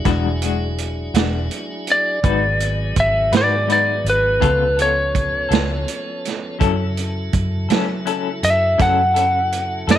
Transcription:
0.00 2.19 F#3 medium
0.00 2.20 D4 medium
0.00 2.20 E4 medium
0.00 2.20 G#4 medium
0.05 1.10 E1 medium
0.05 0.27 E3 medium
0.05 0.27 G#3 medium
0.05 0.27 D4 medium
0.05 0.27 F#4 medium
0.05 kick medium
0.05 snare soft
0.05 closed hi-hat medium
0.42 0.64 G#3 soft
0.42 0.64 D4 soft
0.42 0.63 F#4 soft
0.42 closed hi-hat medium
0.78 closed hi-hat medium
1.14 1.47 E1 medium
1.14 1.37 G#3 soft
1.14 1.37 D4 soft
1.14 1.36 F#4 soft
1.14 snare medium
1.14 closed hi-hat medium
1.51 closed hi-hat medium
1.87 closed hi-hat medium
1.92 2.95 D5 medium
2.23 2.92 G#1 medium
2.23 4.40 D#3 medium
2.23 4.40 F#3 medium
2.23 2.45 G#3 medium
2.23 4.40 B3 medium
2.23 2.45 D#4 medium
2.23 2.45 F#4 medium
2.23 4.40 G#4 medium
2.23 2.46 B4 medium
2.23 kick medium
2.23 closed hi-hat medium
2.60 closed hi-hat medium
2.96 3.30 G#1 medium
2.96 kick medium
2.96 closed hi-hat medium
3.00 3.33 E5 medium
3.32 4.01 G#2 medium
3.32 3.55 D#4 soft
3.32 3.55 F#4 soft
3.32 3.54 B4 soft
3.32 snare medium
3.32 closed hi-hat medium
3.37 3.70 D5 medium
3.68 3.90 G#3 soft
3.68 3.90 D#4 soft
3.68 3.91 F#4 soft
3.68 3.91 B4 medium
3.68 closed hi-hat soft
3.72 4.06 D5 medium
4.04 4.38 G#1 medium
4.04 closed hi-hat medium
4.10 4.78 B4 medium
4.40 5.47 C#2 medium
4.40 4.63 C#3 medium
4.40 6.58 F3 medium
4.40 4.63 B3 medium
4.40 6.58 B3 medium
4.40 6.58 C#4 medium
4.40 4.63 F4 medium
4.40 6.58 A4 medium
4.40 4.64 A4 medium
4.40 kick medium
4.40 closed hi-hat medium
4.77 5.00 B3 soft
4.77 5.00 F4 soft
4.77 4.99 A4 soft
4.77 closed hi-hat medium
4.82 6.95 C#5 medium
5.15 kick medium
5.15 closed hi-hat soft
5.49 5.84 C#2 medium
5.49 5.73 B3 soft
5.49 5.72 F4 soft
5.49 5.72 A4 soft
5.49 closed hi-hat medium
5.53 snare medium
5.88 closed hi-hat medium
6.25 snare soft
6.25 closed hi-hat soft
6.59 7.30 F#2 medium
6.59 9.98 C#3 medium
6.59 6.81 F#3 medium
6.59 9.98 F#3 medium
6.59 6.82 C#4 medium
6.59 6.82 E4 medium
6.59 9.98 E4 medium
6.59 9.98 A4 medium
6.59 6.82 A4 medium
6.59 kick medium
6.59 closed hi-hat medium
6.97 closed hi-hat soft
7.33 7.67 F#2 medium
7.33 kick medium
7.33 closed hi-hat soft
7.69 8.39 F#3 medium
7.69 7.92 C#4 soft
7.69 7.92 E4 soft
7.69 7.91 A4 soft
7.69 snare medium
7.69 closed hi-hat medium
8.05 8.28 F#3 soft
8.05 8.28 C#4 medium
8.05 8.28 E4 medium
8.05 8.29 A4 medium
8.05 closed hi-hat soft
8.43 8.77 F#2 medium
8.43 8.79 E5 medium
8.43 closed hi-hat medium
8.78 9.85 F#2 medium
8.78 9.01 F#3 medium
8.78 9.01 C#4 medium
8.78 9.01 E4 medium
8.78 9.01 A4 medium
8.78 9.87 F#5 medium
8.78 kick medium
8.78 snare soft
8.78 closed hi-hat medium
9.14 9.38 C#4 soft
9.14 9.37 E4 soft
9.14 9.37 A4 soft
9.14 closed hi-hat medium
9.52 closed hi-hat soft
9.87 9.98 F#2 medium
9.87 9.98 C#4 soft
9.87 9.98 E4 soft
9.87 9.98 A4 soft
9.87 9.98 E5 medium
9.87 snare medium
9.87 closed hi-hat medium

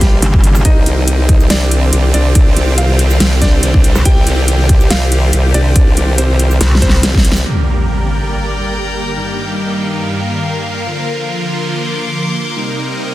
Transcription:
0.00 0.21 A#1 loud
0.00 0.61 A#2 medium
0.00 0.61 D3 medium
0.00 7.42 G3 medium
0.00 0.57 G3 medium
0.00 0.61 D4 medium
0.00 0.62 F4 medium
0.00 0.57 G4 medium
0.00 0.65 D5 medium
0.00 1.41 F5 medium
0.00 1.41 C6 medium
0.00 kick medium
0.00 snare soft
0.00 closed hi-hat medium
0.22 0.63 G1 loud
0.22 closed hi-hat medium
0.34 kick loud
0.44 closed hi-hat medium
0.55 shaker medium
0.65 0.85 C2 loud
0.65 7.42 D#3 medium
0.65 8.14 C4 medium
0.65 4.02 C4 medium
0.65 1.42 D#4 medium
0.65 7.42 G4 medium
0.65 1.42 D#5 loud
0.65 kick loud
0.65 closed hi-hat medium
0.86 1.49 C2 loud
0.86 closed hi-hat medium
1.08 7.46 C5 medium
1.08 closed hi-hat medium
1.16 9.84 G4 medium
1.29 kick loud
1.29 closed hi-hat medium
1.40 shaker soft
1.50 1.91 C2 loud
1.50 2.06 D4 medium
1.50 2.06 D5 medium
1.50 snare loud
1.50 closed hi-hat medium
1.71 closed hi-hat soft
1.93 2.12 C2 loud
1.93 closed hi-hat medium
2.14 2.34 C2 loud
2.14 2.70 D4 medium
2.14 2.70 D5 loud
2.14 closed hi-hat soft
2.35 2.55 C2 loud
2.35 kick loud
2.35 closed hi-hat medium
2.57 3.19 C2 loud
2.57 closed hi-hat soft
2.78 3.34 F4 medium
2.78 3.34 F5 loud
2.78 closed hi-hat medium
2.99 closed hi-hat medium
3.10 shaker medium
3.20 3.61 C2 loud
3.20 snare loud
3.20 closed hi-hat medium
3.42 3.97 D4 medium
3.42 3.97 D5 loud
3.42 kick medium
3.42 snare soft
3.42 closed hi-hat soft
3.63 3.94 C2 loud
3.63 closed hi-hat medium
3.74 kick loud
3.84 closed hi-hat medium
3.95 4.04 C2 loud
3.95 shaker medium
4.05 4.25 C2 loud
4.05 7.43 F4 medium
4.05 4.83 G4 medium
4.05 4.83 G5 loud
4.05 kick loud
4.05 closed hi-hat medium
4.27 4.89 C2 loud
4.27 closed hi-hat medium
4.48 closed hi-hat medium
4.69 kick loud
4.69 closed hi-hat medium
4.80 shaker medium
4.90 5.31 C2 loud
4.90 5.46 F4 medium
4.90 5.46 F5 loud
4.90 snare loud
4.90 closed hi-hat medium
5.12 closed hi-hat soft
5.33 5.53 C2 loud
5.33 closed hi-hat medium
5.54 5.74 C2 loud
5.54 6.10 D4 medium
5.54 6.10 D5 loud
5.54 closed hi-hat medium
5.76 5.95 C2 loud
5.76 kick loud
5.76 closed hi-hat medium
5.97 6.59 C2 loud
5.97 closed hi-hat medium
6.18 6.74 C4 medium
6.18 6.74 C5 loud
6.18 closed hi-hat medium
6.39 closed hi-hat medium
6.51 shaker medium
6.61 7.02 C2 loud
6.61 snare medium
6.61 closed hi-hat medium
6.75 snare medium
6.82 7.38 C4 medium
6.82 7.38 C5 loud
6.82 kick medium
6.82 closed hi-hat medium
6.89 snare medium
7.03 7.44 C2 loud
7.03 snare medium
7.03 closed hi-hat medium
7.15 kick loud
7.15 snare loud
7.25 closed hi-hat medium
7.32 snare loud
7.36 shaker medium
7.46 9.14 D3 medium
7.46 10.83 G3 medium
7.46 12.52 A#3 medium
7.46 10.83 G4 medium
7.46 9.14 A#4 medium
7.46 impact medium
7.80 11.43 G5 medium
7.87 9.84 D5 medium
8.23 9.84 A#5 medium
9.16 10.85 G2 medium
9.16 10.85 D#3 medium
9.16 10.86 G3 medium
9.16 13.14 A#4 medium
9.26 10.86 D#4 medium
9.26 13.14 A#4 medium
9.32 13.14 F5 medium
10.86 12.55 D3 medium
10.86 12.55 F3 medium
10.86 12.55 F4 medium
11.29 13.14 C6 medium
11.63 13.14 D6 medium
12.56 13.14 C3 medium
12.56 13.14 G3 medium
12.56 13.14 A#3 medium
12.56 13.14 C4 medium
12.56 13.14 D#4 medium
12.72 13.14 D#5 medium
12.82 13.14 G4 medium

